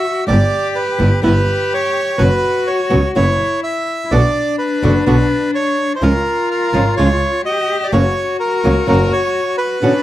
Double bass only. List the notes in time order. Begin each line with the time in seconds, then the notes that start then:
0.29 G1
1.00 G1
1.24 G1
2.20 F#1
2.92 C#2
3.16 F#1
4.11 B1
4.83 F#1
5.07 B1
6.02 C#2
6.73 G#1
6.98 C#2
7.93 F#1
8.65 C#2
8.88 F#1